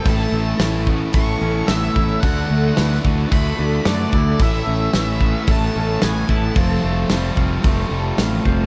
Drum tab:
HH |o-o-o-o-|o-o-o-o-|o-o-o-o-|o-o-o-o-|
SD |--o---o-|--o---o-|--o---o-|--o---o-|
BD |o--oo--o|o--oo--o|o--oo--o|o--oo--o|